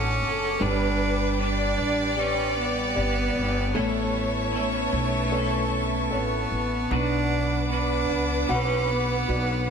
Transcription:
Already playing: A1 A3 C#4 D4 F#4 A4 D5 F#5 D6
0.22 F#1
0.59 G1 G3 D4 G4 B4 G5
1.38 G3 D4 G4 B4 D5
1.78 A1
2.16 G3 G4 B4
2.20 C#4 G4 B4
2.58 B3
2.95 G1 G4 B4 D5
3.36 G1
3.74 A1 A2 E3 A3 B3 C#4 E4 A4 C#5 E5 A5 C#6
4.52 B3 C#4 E4 A4
4.56 A3
4.93 B1
5.30 B3 C#4 A4 B4 C#5
5.35 E4 A4
6.11 A1 B3 A4 B4 C#5
6.51 A1
6.90 B1 B2 F#3 B3 D4 F#4 B4 F#5 D6
7.69 B3 D4 F#4 B4
8.09 C#2
8.46 B1 B3 C#4 F#4 B4 F#5
8.52 F#4 B4
8.91 B3
9.28 B1 F#4 B4 D5

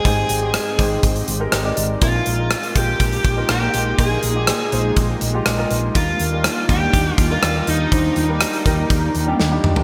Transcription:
Already playing: G#2 G#3 C4 D#4 G4 C5 D5 G5
0.04 G#1 G#2 G#3 D#4 G4 G#4 C5, kick, closed hi-hat
0.29 G#1, closed hi-hat
0.41 G#3 D#4 G4 C5
0.54 cross-stick, closed hi-hat
0.78 G#1 G#3 D#4 G4 C5, kick, closed hi-hat
1.03 G#1, kick, closed hi-hat
1.16 closed hi-hat
1.28 G#1, closed hi-hat
1.40 G#3 D#4 G4 A#4
1.52 G#1, cross-stick, closed hi-hat
1.64 G#3 D#4 G4 D5
1.77 G#1, closed hi-hat
2.01 A#1 A#2 G#3 A#3 D#4 F4 A#4, kick, closed hi-hat
2.26 A#1, closed hi-hat
2.38 G#3 D#4 F4 A#4
2.51 cross-stick, closed hi-hat
2.63 closed hi-hat
2.75 A#1 G#3 D#4 F4 G4 A#4, kick, closed hi-hat
3.00 A#1, kick, closed hi-hat
3.12 closed hi-hat
3.24 A#1, kick, closed hi-hat
3.37 G#3 D#4 F4 A#4
3.49 A#1 G4, cross-stick, closed hi-hat
3.61 G#3 D#4 F4 A#4
3.74 A#1, closed hi-hat
3.98 A#1 A#2 G#3 D#4 F4 G#4 A#4, kick, closed hi-hat
4.23 A#1, closed hi-hat
4.35 G#3 D#4 F4 G4
4.47 cross-stick, closed hi-hat
4.72 A#1 G#3 D#4 F4 C5, closed hi-hat
4.96 A#1, kick, closed hi-hat
5.21 A#1, closed hi-hat
5.33 G#3 D#4 F4 G4
5.46 A#1, cross-stick, closed hi-hat
5.58 G#3 D#4 F4 A#4
5.71 A#1, closed hi-hat
5.95 D#2 D#3 G3 D4 D#4 F4 G4 A#4 D5, kick, closed hi-hat
6.19 D#2, closed hi-hat
6.32 G3 D4 D#4 A#4
6.44 cross-stick, closed hi-hat
6.69 D#2 G3 D4 D#4 G4, kick, closed hi-hat
6.93 D#2, kick, closed hi-hat
7.14 F4
7.18 D#2, kick, closed hi-hat
7.30 G3 D4 D#4 F4 A#4
7.43 D#2, cross-stick, closed hi-hat
7.55 G3 D4 D#4 A#4
7.67 D#2 D#4, closed hi-hat
7.91 D#2 D#3 G3 D4 D#4 C5, kick, closed hi-hat
8.16 D#2, closed hi-hat
8.28 G3 D4 D#4 A#4
8.41 cross-stick, closed hi-hat
8.53 closed hi-hat
8.65 D#2 G3 D#4 A#4 D5, kick, closed hi-hat
8.90 D#2, kick, closed hi-hat
9.15 D#2, closed hi-hat
9.27 G3 D4 D#4 G4
9.40 D#2, snare
9.51 G3 D4 D#4 G4
9.64 D#2, mid tom
9.76 floor tom

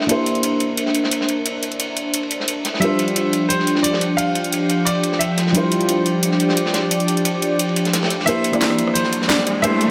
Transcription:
Already playing: D4 A#4 C5 E5
0.01 snare
0.07 A#3 D4 E4 G4, closed hi-hat, ride
0.11 C5
0.26 closed hi-hat, ride
0.35 closed hi-hat
0.43 closed hi-hat, ride
0.60 closed hi-hat, ride
0.77 closed hi-hat, ride
0.86 snare
0.95 closed hi-hat, ride
1.04 snare
1.11 closed hi-hat, ride
1.21 snare
1.29 closed hi-hat, ride
1.46 closed hi-hat, ride
1.63 closed hi-hat, ride
1.72 closed hi-hat
1.80 closed hi-hat, ride
1.96 closed hi-hat, ride
2.14 closed hi-hat, ride
2.23 ride
2.31 closed hi-hat, ride
2.40 snare
2.48 closed hi-hat, ride
2.65 snare, closed hi-hat, ride
2.74 snare
2.80 F3 G3 D4 F4 G4 C5 E5 G5, closed hi-hat, ride
2.84 C5
2.99 closed hi-hat, ride
3.08 closed hi-hat
3.16 closed hi-hat, ride
3.33 closed hi-hat, ride
3.49 C5, closed hi-hat, ride
3.59 snare
3.67 closed hi-hat, ride
3.75 snare
3.83 D5, closed hi-hat, ride
3.93 snare
4.01 closed hi-hat, ride
4.17 F5, closed hi-hat, ride
4.35 closed hi-hat, ride
4.44 closed hi-hat
4.52 closed hi-hat, ride
4.70 closed hi-hat, ride
4.85 D5, closed hi-hat, ride
4.95 ride
5.03 closed hi-hat, ride
5.12 snare
5.19 E5, closed hi-hat, ride
5.37 snare, closed hi-hat, ride
5.47 snare
5.53 G3 D4 E4 F4 D5, closed hi-hat, ride
5.57 C5
5.72 closed hi-hat, ride
5.81 closed hi-hat
5.89 closed hi-hat, ride
6.06 closed hi-hat, ride
6.23 closed hi-hat, ride
6.31 snare
6.40 closed hi-hat, ride
6.49 snare
6.57 closed hi-hat, ride
6.66 snare
6.74 snare, closed hi-hat, ride
6.91 closed hi-hat, ride
7.00 closed hi-hat
7.08 closed hi-hat, ride
7.17 closed hi-hat
7.25 closed hi-hat, ride
7.42 closed hi-hat, ride
7.59 closed hi-hat, ride
7.69 ride
7.76 closed hi-hat, ride
7.85 snare, closed hi-hat
7.93 snare, closed hi-hat, ride
8.03 snare, ride
8.06 snare, ride
8.10 snare, closed hi-hat, ride
8.20 snare
8.26 C2 A#3 D4 E4 G4 C5 D5 E5, closed hi-hat, ride, riser
8.44 closed hi-hat, ride
8.52 C2 A#3 D4 E4 G4 D5, cross-stick, closed hi-hat
8.61 snare, closed hi-hat, ride
8.70 cross-stick
8.79 C2, closed hi-hat, ride
8.87 cross-stick
8.94 C5, closed hi-hat, ride
9.04 snare
9.13 G1, closed hi-hat, ride
9.22 snare
9.28 D5, snare, closed hi-hat, ride
9.39 C2, snare
9.47 closed hi-hat, ride
9.62 C2 A#3 D4 E4 G4 C5 E5, closed hi-hat, ride
9.81 closed hi-hat, ride

